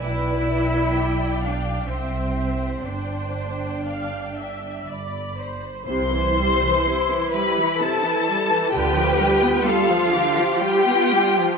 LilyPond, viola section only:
\new Staff \with { instrumentName = "Viola section" } { \clef bass \time 3/4 \key c \major \tempo 4 = 62 << { r2. | r4 f''8 e''8 d''8 c''8 | e'2. | f'2. | } \\ { b'4 d''4 c''4 | c''4 r2 | c16 e16 g16 e16 c16 e16 g16 e16 c16 e16 g16 e16 | d16 f16 g16 b16 g16 f16 d16 f16 g16 b16 g16 f16 | } >> }